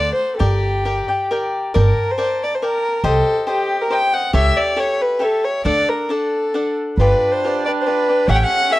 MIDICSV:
0, 0, Header, 1, 5, 480
1, 0, Start_track
1, 0, Key_signature, -2, "minor"
1, 0, Tempo, 448430
1, 442, Time_signature, 3, 2, 24, 8
1, 1885, Tempo, 434153
1, 9662, End_track
2, 0, Start_track
2, 0, Title_t, "Cavaquinho"
2, 0, Program_c, 0, 24
2, 0, Note_on_c, 0, 69, 44
2, 0, Note_on_c, 0, 72, 53
2, 0, Note_on_c, 0, 74, 55
2, 0, Note_on_c, 0, 78, 49
2, 415, Note_off_c, 0, 69, 0
2, 420, Note_off_c, 0, 78, 0
2, 420, Note_on_c, 0, 70, 68
2, 421, Note_off_c, 0, 72, 0
2, 424, Note_off_c, 0, 74, 0
2, 424, Note_on_c, 0, 79, 81
2, 425, Note_on_c, 0, 67, 71
2, 428, Note_on_c, 0, 74, 74
2, 907, Note_off_c, 0, 67, 0
2, 907, Note_off_c, 0, 70, 0
2, 911, Note_on_c, 0, 67, 52
2, 912, Note_on_c, 0, 70, 51
2, 917, Note_off_c, 0, 79, 0
2, 918, Note_off_c, 0, 74, 0
2, 921, Note_on_c, 0, 79, 58
2, 923, Note_on_c, 0, 74, 49
2, 1142, Note_off_c, 0, 74, 0
2, 1149, Note_off_c, 0, 79, 0
2, 1155, Note_on_c, 0, 74, 48
2, 1161, Note_off_c, 0, 67, 0
2, 1162, Note_on_c, 0, 79, 43
2, 1164, Note_off_c, 0, 70, 0
2, 1174, Note_on_c, 0, 67, 44
2, 1396, Note_off_c, 0, 67, 0
2, 1398, Note_off_c, 0, 74, 0
2, 1398, Note_off_c, 0, 79, 0
2, 1400, Note_on_c, 0, 70, 65
2, 1409, Note_on_c, 0, 67, 60
2, 1410, Note_on_c, 0, 74, 58
2, 1411, Note_on_c, 0, 79, 59
2, 1851, Note_off_c, 0, 74, 0
2, 1853, Note_off_c, 0, 70, 0
2, 1860, Note_off_c, 0, 67, 0
2, 1864, Note_on_c, 0, 74, 73
2, 1866, Note_on_c, 0, 70, 74
2, 1874, Note_off_c, 0, 79, 0
2, 1875, Note_on_c, 0, 81, 78
2, 1878, Note_on_c, 0, 79, 72
2, 2332, Note_off_c, 0, 70, 0
2, 2340, Note_off_c, 0, 74, 0
2, 2341, Note_off_c, 0, 81, 0
2, 2345, Note_on_c, 0, 70, 54
2, 2350, Note_off_c, 0, 79, 0
2, 2353, Note_on_c, 0, 74, 58
2, 2354, Note_on_c, 0, 79, 51
2, 2354, Note_on_c, 0, 81, 60
2, 2823, Note_off_c, 0, 70, 0
2, 2828, Note_off_c, 0, 74, 0
2, 2837, Note_off_c, 0, 81, 0
2, 2837, Note_on_c, 0, 70, 51
2, 2841, Note_on_c, 0, 74, 49
2, 2842, Note_off_c, 0, 79, 0
2, 2847, Note_on_c, 0, 79, 54
2, 2852, Note_on_c, 0, 81, 54
2, 3291, Note_off_c, 0, 70, 0
2, 3292, Note_off_c, 0, 74, 0
2, 3295, Note_on_c, 0, 67, 72
2, 3296, Note_on_c, 0, 72, 83
2, 3298, Note_off_c, 0, 79, 0
2, 3302, Note_off_c, 0, 81, 0
2, 3302, Note_on_c, 0, 75, 86
2, 3306, Note_on_c, 0, 79, 82
2, 3758, Note_off_c, 0, 72, 0
2, 3768, Note_off_c, 0, 67, 0
2, 3770, Note_off_c, 0, 75, 0
2, 3771, Note_on_c, 0, 72, 59
2, 3772, Note_on_c, 0, 67, 50
2, 3783, Note_on_c, 0, 75, 52
2, 3789, Note_off_c, 0, 79, 0
2, 3793, Note_on_c, 0, 79, 60
2, 4240, Note_off_c, 0, 67, 0
2, 4241, Note_off_c, 0, 72, 0
2, 4253, Note_on_c, 0, 67, 51
2, 4254, Note_on_c, 0, 72, 54
2, 4255, Note_off_c, 0, 75, 0
2, 4255, Note_off_c, 0, 79, 0
2, 4268, Note_on_c, 0, 79, 59
2, 4269, Note_on_c, 0, 75, 53
2, 4490, Note_off_c, 0, 79, 0
2, 4503, Note_off_c, 0, 72, 0
2, 4503, Note_off_c, 0, 75, 0
2, 4503, Note_on_c, 0, 79, 39
2, 4509, Note_off_c, 0, 67, 0
2, 4516, Note_on_c, 0, 75, 32
2, 4517, Note_on_c, 0, 72, 29
2, 4724, Note_off_c, 0, 72, 0
2, 4729, Note_on_c, 0, 67, 89
2, 4733, Note_off_c, 0, 75, 0
2, 4734, Note_on_c, 0, 69, 77
2, 4737, Note_on_c, 0, 73, 88
2, 4740, Note_off_c, 0, 79, 0
2, 4744, Note_on_c, 0, 76, 97
2, 5191, Note_off_c, 0, 67, 0
2, 5200, Note_off_c, 0, 69, 0
2, 5200, Note_off_c, 0, 73, 0
2, 5204, Note_off_c, 0, 76, 0
2, 5204, Note_on_c, 0, 67, 53
2, 5207, Note_on_c, 0, 69, 64
2, 5214, Note_on_c, 0, 73, 57
2, 5217, Note_on_c, 0, 76, 53
2, 5665, Note_off_c, 0, 67, 0
2, 5674, Note_off_c, 0, 69, 0
2, 5678, Note_on_c, 0, 67, 56
2, 5687, Note_on_c, 0, 69, 60
2, 5689, Note_off_c, 0, 73, 0
2, 5690, Note_off_c, 0, 76, 0
2, 5702, Note_on_c, 0, 73, 48
2, 5703, Note_on_c, 0, 76, 60
2, 6173, Note_off_c, 0, 69, 0
2, 6177, Note_off_c, 0, 67, 0
2, 6183, Note_on_c, 0, 62, 64
2, 6186, Note_on_c, 0, 69, 78
2, 6188, Note_off_c, 0, 73, 0
2, 6188, Note_off_c, 0, 76, 0
2, 6193, Note_on_c, 0, 74, 81
2, 6193, Note_on_c, 0, 78, 76
2, 6666, Note_off_c, 0, 62, 0
2, 6671, Note_on_c, 0, 62, 49
2, 6675, Note_off_c, 0, 69, 0
2, 6678, Note_off_c, 0, 74, 0
2, 6678, Note_off_c, 0, 78, 0
2, 6683, Note_on_c, 0, 74, 58
2, 6686, Note_on_c, 0, 69, 53
2, 6693, Note_on_c, 0, 78, 60
2, 7156, Note_off_c, 0, 62, 0
2, 7159, Note_off_c, 0, 69, 0
2, 7168, Note_off_c, 0, 74, 0
2, 7168, Note_off_c, 0, 78, 0
2, 7170, Note_on_c, 0, 62, 47
2, 7172, Note_on_c, 0, 69, 61
2, 7181, Note_on_c, 0, 78, 53
2, 7183, Note_on_c, 0, 74, 55
2, 7654, Note_off_c, 0, 62, 0
2, 7655, Note_off_c, 0, 69, 0
2, 7660, Note_off_c, 0, 78, 0
2, 7661, Note_off_c, 0, 74, 0
2, 7671, Note_on_c, 0, 65, 66
2, 7682, Note_on_c, 0, 71, 65
2, 7683, Note_on_c, 0, 67, 69
2, 7685, Note_on_c, 0, 74, 78
2, 8147, Note_off_c, 0, 65, 0
2, 8153, Note_off_c, 0, 71, 0
2, 8154, Note_off_c, 0, 74, 0
2, 8164, Note_on_c, 0, 65, 51
2, 8167, Note_off_c, 0, 67, 0
2, 8171, Note_on_c, 0, 67, 50
2, 8174, Note_on_c, 0, 71, 52
2, 8184, Note_on_c, 0, 74, 59
2, 8392, Note_off_c, 0, 74, 0
2, 8400, Note_off_c, 0, 65, 0
2, 8403, Note_off_c, 0, 67, 0
2, 8404, Note_off_c, 0, 71, 0
2, 8405, Note_on_c, 0, 74, 34
2, 8417, Note_on_c, 0, 71, 37
2, 8425, Note_on_c, 0, 67, 32
2, 8622, Note_off_c, 0, 67, 0
2, 8627, Note_off_c, 0, 74, 0
2, 8633, Note_off_c, 0, 71, 0
2, 8633, Note_on_c, 0, 65, 53
2, 8635, Note_on_c, 0, 67, 49
2, 8646, Note_on_c, 0, 71, 50
2, 8651, Note_on_c, 0, 74, 54
2, 8865, Note_off_c, 0, 74, 0
2, 8870, Note_off_c, 0, 65, 0
2, 8871, Note_off_c, 0, 67, 0
2, 8876, Note_off_c, 0, 71, 0
2, 8878, Note_on_c, 0, 74, 37
2, 8891, Note_on_c, 0, 67, 30
2, 8891, Note_on_c, 0, 71, 34
2, 9088, Note_off_c, 0, 67, 0
2, 9099, Note_off_c, 0, 74, 0
2, 9102, Note_on_c, 0, 67, 72
2, 9104, Note_off_c, 0, 71, 0
2, 9105, Note_on_c, 0, 69, 64
2, 9108, Note_on_c, 0, 73, 66
2, 9110, Note_on_c, 0, 76, 86
2, 9542, Note_off_c, 0, 67, 0
2, 9555, Note_off_c, 0, 69, 0
2, 9555, Note_on_c, 0, 67, 50
2, 9561, Note_off_c, 0, 73, 0
2, 9568, Note_on_c, 0, 69, 48
2, 9574, Note_off_c, 0, 76, 0
2, 9574, Note_on_c, 0, 73, 56
2, 9585, Note_on_c, 0, 76, 64
2, 9662, Note_off_c, 0, 67, 0
2, 9662, Note_off_c, 0, 69, 0
2, 9662, Note_off_c, 0, 73, 0
2, 9662, Note_off_c, 0, 76, 0
2, 9662, End_track
3, 0, Start_track
3, 0, Title_t, "Fiddle"
3, 0, Program_c, 1, 110
3, 0, Note_on_c, 1, 74, 84
3, 144, Note_off_c, 1, 74, 0
3, 151, Note_on_c, 1, 72, 69
3, 366, Note_on_c, 1, 69, 46
3, 382, Note_off_c, 1, 72, 0
3, 401, Note_on_c, 1, 67, 69
3, 417, Note_off_c, 1, 69, 0
3, 1385, Note_off_c, 1, 67, 0
3, 1913, Note_on_c, 1, 70, 75
3, 2271, Note_on_c, 1, 72, 87
3, 2288, Note_off_c, 1, 70, 0
3, 2628, Note_on_c, 1, 74, 79
3, 2644, Note_off_c, 1, 72, 0
3, 2758, Note_on_c, 1, 72, 47
3, 2774, Note_off_c, 1, 74, 0
3, 2846, Note_on_c, 1, 70, 79
3, 2862, Note_off_c, 1, 72, 0
3, 3316, Note_off_c, 1, 70, 0
3, 3323, Note_on_c, 1, 69, 78
3, 3764, Note_off_c, 1, 69, 0
3, 3815, Note_on_c, 1, 67, 81
3, 4157, Note_on_c, 1, 70, 76
3, 4173, Note_off_c, 1, 67, 0
3, 4278, Note_on_c, 1, 79, 86
3, 4295, Note_off_c, 1, 70, 0
3, 4513, Note_on_c, 1, 78, 81
3, 4529, Note_off_c, 1, 79, 0
3, 4739, Note_off_c, 1, 78, 0
3, 4745, Note_on_c, 1, 76, 90
3, 4990, Note_on_c, 1, 74, 79
3, 5006, Note_off_c, 1, 76, 0
3, 5241, Note_on_c, 1, 73, 81
3, 5257, Note_off_c, 1, 74, 0
3, 5486, Note_on_c, 1, 71, 71
3, 5502, Note_off_c, 1, 73, 0
3, 5724, Note_on_c, 1, 69, 79
3, 5741, Note_off_c, 1, 71, 0
3, 5961, Note_on_c, 1, 73, 72
3, 5978, Note_off_c, 1, 69, 0
3, 6183, Note_off_c, 1, 73, 0
3, 6190, Note_on_c, 1, 74, 92
3, 6446, Note_on_c, 1, 70, 73
3, 6462, Note_off_c, 1, 74, 0
3, 6685, Note_on_c, 1, 69, 63
3, 6702, Note_off_c, 1, 70, 0
3, 7420, Note_off_c, 1, 69, 0
3, 7649, Note_on_c, 1, 71, 77
3, 8028, Note_on_c, 1, 72, 82
3, 8045, Note_off_c, 1, 71, 0
3, 8391, Note_off_c, 1, 72, 0
3, 8399, Note_on_c, 1, 74, 72
3, 8467, Note_off_c, 1, 74, 0
3, 8574, Note_on_c, 1, 72, 60
3, 8628, Note_on_c, 1, 71, 93
3, 8645, Note_off_c, 1, 72, 0
3, 9113, Note_on_c, 1, 78, 99
3, 9130, Note_off_c, 1, 71, 0
3, 9180, Note_on_c, 1, 79, 75
3, 9197, Note_off_c, 1, 78, 0
3, 9261, Note_on_c, 1, 78, 111
3, 9277, Note_off_c, 1, 79, 0
3, 9586, Note_on_c, 1, 76, 97
3, 9603, Note_off_c, 1, 78, 0
3, 9662, Note_off_c, 1, 76, 0
3, 9662, End_track
4, 0, Start_track
4, 0, Title_t, "Trumpet"
4, 0, Program_c, 2, 56
4, 7675, Note_on_c, 2, 62, 85
4, 9112, Note_on_c, 2, 61, 82
4, 9128, Note_off_c, 2, 62, 0
4, 9662, Note_off_c, 2, 61, 0
4, 9662, End_track
5, 0, Start_track
5, 0, Title_t, "Upright bass"
5, 0, Program_c, 3, 32
5, 0, Note_on_c, 3, 38, 90
5, 115, Note_off_c, 3, 38, 0
5, 433, Note_on_c, 3, 31, 74
5, 1062, Note_off_c, 3, 31, 0
5, 1882, Note_on_c, 3, 31, 83
5, 2045, Note_off_c, 3, 31, 0
5, 3294, Note_on_c, 3, 36, 77
5, 3462, Note_off_c, 3, 36, 0
5, 4734, Note_on_c, 3, 37, 80
5, 4899, Note_off_c, 3, 37, 0
5, 6186, Note_on_c, 3, 38, 74
5, 6351, Note_off_c, 3, 38, 0
5, 7649, Note_on_c, 3, 31, 70
5, 7813, Note_off_c, 3, 31, 0
5, 9092, Note_on_c, 3, 33, 81
5, 9250, Note_off_c, 3, 33, 0
5, 9662, End_track
0, 0, End_of_file